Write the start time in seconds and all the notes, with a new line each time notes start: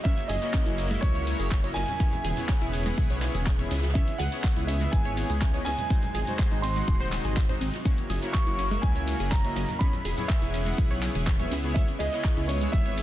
0.04 C#3 F#3 A#3 C#4 E4 F#4 C#5 E5, kick, closed hi-hat, tambourine, shaker
0.17 closed hi-hat, high conga, shaker
0.28 F#1 G#4 D#5, open hi-hat, ride, tambourine, high bongo, shaker
0.42 A#3 E4 F#4 C#5, snare, closed hi-hat, shaker
0.54 C#4, kick, snare, clap, closed hi-hat, tambourine, shaker
0.66 F#1 E4, closed hi-hat, shaker
0.78 open hi-hat, ride, tambourine, shaker
0.91 G#3 A#3 E4 F#4 E5, closed hi-hat, shaker
1.01 C#2 C#5, kick, closed hi-hat, tambourine, shaker
1.15 C#5, closed hi-hat, high conga, shaker
1.27 A#3 E4 F#4 C#5, open hi-hat, ride, tambourine, shaker
1.39 F#1 G#4, closed hi-hat, shaker
1.51 kick, snare, clap, closed hi-hat, tambourine, shaker
1.64 A#3 E4 F#4 C#5 D#5, closed hi-hat, shaker
1.74 F#1 C#4 G#5, open hi-hat, ride, tambourine, high bongo, shaker
1.88 closed hi-hat, low conga, shaker
2.00 G#3 B3 C#4 E4 G#4 C#5, kick, closed hi-hat, tambourine, shaker
2.12 closed hi-hat, high conga, low conga, shaker
2.24 E1 G#4, open hi-hat, ride, tambourine, high bongo, shaker
2.37 B3 E4 G#4 C#5, closed hi-hat, low conga, shaker
2.49 C#4, kick, snare, clap, closed hi-hat, tambourine, shaker
2.61 E1 E4, closed hi-hat, shaker
2.73 open hi-hat, ride, tambourine, shaker
2.86 G#3 B3 E4 G#4 F#5, closed hi-hat, shaker
2.98 B1, kick, closed hi-hat, tambourine, shaker
3.10 C#5, snare, open hi-hat, shaker
3.21 B3 E4 G#4 C#5, snare, clap, open hi-hat, ride, tambourine, shaker
3.34 E1 G#4, closed hi-hat, high conga, shaker
3.46 kick, clap, closed hi-hat, shaker
3.58 B3 E4 G#4 C#5 E5, closed hi-hat, tambourine, low conga, shaker
3.71 C#2 C#4, snare, open hi-hat, ride, tambourine, high bongo, shaker
3.77 snare, tambourine
3.83 snare, closed hi-hat, tambourine, high bongo, shaker
3.89 snare, tambourine
3.94 B3 C#4 E4 G#4 C#5 E5, kick, closed hi-hat, shaker
4.08 closed hi-hat, high conga, shaker
4.18 C#2 G#4 F#5, open hi-hat, ride, tambourine, high bongo, shaker
4.32 B3 E4 G#4 C#5, snare, closed hi-hat, shaker
4.44 kick, snare, clap, closed hi-hat, tambourine, shaker
4.56 C#2 E4, closed hi-hat, shaker
4.67 C#4 E5, open hi-hat, ride, tambourine, shaker
4.81 G#3 B3 E4 G#4 E5, closed hi-hat, shaker
4.91 G#1 G#5, kick, closed hi-hat, tambourine, shaker
5.05 C#5, closed hi-hat, high conga, shaker
5.17 B3 E4 G#4 C#5, open hi-hat, ride, tambourine, shaker
5.30 C#2 G#4, closed hi-hat, shaker
5.42 kick, snare, clap, closed hi-hat, tambourine, shaker
5.54 B3 E4 G#4 C#5 D#5, closed hi-hat, shaker
5.65 C#2 C#4 G#5, open hi-hat, ride, tambourine, high bongo, shaker
5.78 closed hi-hat, low conga, shaker
5.90 C3 F#3 G#3 C4 D#4 F#4 C5, kick, closed hi-hat, tambourine, shaker
6.03 closed hi-hat, high conga, low conga, shaker
6.15 G#1 G#4, open hi-hat, ride, tambourine, high bongo, shaker
6.27 G#3 D#4 F#4 C5, closed hi-hat, low conga, shaker
6.39 kick, snare, clap, closed hi-hat, tambourine, shaker
6.52 G#1 D#4, closed hi-hat, shaker
6.62 C4 C6, open hi-hat, ride, tambourine, shaker
6.76 G#3 D#4 F#4 F#5, closed hi-hat, shaker
6.88 D#1, kick, closed hi-hat, tambourine, shaker
7.00 C5, closed hi-hat, open hi-hat, shaker
7.12 G#3 D#4 F#4 C5, clap, open hi-hat, ride, tambourine, shaker
7.25 G#1 G#4, closed hi-hat, high conga, shaker
7.36 kick, snare, clap, closed hi-hat, tambourine, shaker
7.49 G#3 D#4 F#4 C5 D#5, closed hi-hat, low conga, shaker
7.61 G#1 C4, open hi-hat, ride, tambourine, shaker
7.73 snare, closed hi-hat, high bongo, shaker
7.85 C#3 A#3 C#4 E4 F#4 C#5, kick, closed hi-hat, tambourine, shaker
7.98 closed hi-hat, high conga, shaker
8.10 F#1 G#4, open hi-hat, ride, tambourine, high bongo, shaker
8.22 A#3 E4 F#4 C#5, snare, closed hi-hat, shaker
8.33 C#6, kick, snare, clap, closed hi-hat, tambourine, shaker
8.47 F#1 E4, closed hi-hat, shaker
8.59 C#4, open hi-hat, ride, tambourine, shaker
8.71 G#3 A#3 E4 F#4 E5, closed hi-hat, shaker
8.82 C#2 G#5, kick, closed hi-hat, tambourine, shaker
8.96 C#5, closed hi-hat, high conga, shaker
9.07 A#3 E4 F#4 C#5, open hi-hat, ride, tambourine, shaker
9.20 F#1 G#4, closed hi-hat, shaker
9.30 A#5, kick, snare, clap, closed hi-hat, tambourine, shaker
9.44 A#3 E4 F#4 C#5 D#5, closed hi-hat, shaker
9.56 F#1 C#4, open hi-hat, ride, tambourine, high bongo, shaker
9.68 closed hi-hat, low conga, shaker
9.79 G#3 B3 C#4 E4 G#4 C#5 B5, kick, closed hi-hat, tambourine, shaker
9.93 closed hi-hat, high conga, low conga, shaker
10.05 E1 G#4, open hi-hat, ride, tambourine, high bongo, shaker
10.18 B3 E4 G#4 C#5, closed hi-hat, low conga, shaker
10.28 E5, kick, snare, clap, closed hi-hat, tambourine, shaker
10.42 E1 E4, closed hi-hat, shaker
10.54 C#4, open hi-hat, ride, tambourine, shaker
10.66 G#3 B3 E4 G#4 F#5, closed hi-hat, shaker
10.78 B1, kick, closed hi-hat, tambourine, shaker
10.91 C#5, closed hi-hat, open hi-hat, shaker
11.03 B3 E4 G#4 C#5, clap, open hi-hat, ride, tambourine, shaker
11.15 E1 G#4, closed hi-hat, high conga, shaker
11.27 kick, snare, clap, closed hi-hat, tambourine, shaker
11.39 B3 E4 G#4 C#5 E5, closed hi-hat, low conga, shaker
11.51 C#2 C#4, snare, open hi-hat, ride, tambourine, high bongo, shaker
11.64 B3 E4 G#4 C#5, closed hi-hat, high bongo, shaker
11.74 B3 C#4 E4 G#4 C#5 E5, kick, closed hi-hat, tambourine, shaker
11.88 closed hi-hat, high conga, shaker
11.99 C#2 G#4 D#5, open hi-hat, ride, tambourine, high bongo, shaker
12.13 B3 E4 G#4 C#5, snare, closed hi-hat, shaker
12.24 kick, snare, clap, closed hi-hat, tambourine, shaker
12.37 C#2 E4, closed hi-hat, shaker
12.48 C#4 C#5, open hi-hat, ride, tambourine, shaker
12.61 G#3 B3 E4 G#4 E5, closed hi-hat, shaker
12.72 G#1 E5, kick, closed hi-hat, tambourine, shaker
12.85 C#5, closed hi-hat, high conga, shaker
12.98 B3 E4 G#4 C#5, open hi-hat, ride, tambourine, shaker